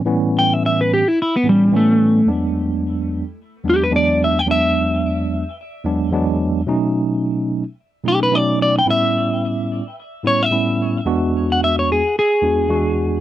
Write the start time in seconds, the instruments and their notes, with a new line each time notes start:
0.05 tine electric piano A2 E3 G3 B3 C#4
0.39 clean electric guitar G5
0.54 clean electric guitar E5
0.66 clean electric guitar E5
0.81 clean electric guitar B4
0.94 clean electric guitar G4
1.08 clean electric guitar E4
1.22 clean electric guitar E4
1.36 clean electric guitar B3
1.43 tine electric piano A2 E3 G3 B3 C#4
1.49 clean electric guitar G3
1.72 tine electric piano A2 E3 G3 B3 C#4
1.76 clean electric guitar A3
2.26 tine electric piano E2 F#3 G#3 B3 D4
3.64 tine electric piano E2 F#3 G#3 B3 D4
3.70 clean electric guitar G4
3.84 clean electric guitar B4
3.90 tine electric piano E2 F#3 G#3 B3 D4
3.96 clean electric guitar D5
4.24 clean electric guitar E5
4.39 clean electric guitar G5
4.46 tine electric piano E2 F#3 G#3 B3 D4
4.51 clean electric guitar E5
5.84 tine electric piano E2 F#3 G#3 B3 D4
6.12 tine electric piano E2 F#3 G#3 B3 D4
6.67 tine electric piano B2 F#3 A3 C#4 D#4
8.03 tine electric piano B2 F#3 A3 C#4 D#4
8.08 clean electric guitar G4
8.23 clean electric guitar B4
8.31 tine electric piano B2 F#3 A3 C#4 D#4
8.35 clean electric guitar D5
8.62 clean electric guitar D5
8.79 clean electric guitar G5
8.86 tine electric piano A2 G3 B3 C#4 E4
8.90 clean electric guitar E5
10.23 tine electric piano A2 G3 B3 C#4 E4, clean electric guitar C#5
10.43 clean electric guitar E5
10.51 tine electric piano A2 G3 B3 C#4 E4
11.05 tine electric piano E2 G#3 B3 D4 F#4
11.52 clean electric guitar F#5
11.64 clean electric guitar E5
11.79 clean electric guitar C#5
11.92 clean electric guitar G#4
12.19 clean electric guitar G#4
12.42 tine electric piano E2 G#3 B3 D4 F#4
12.69 tine electric piano E2 G#3 B3 D4 F#4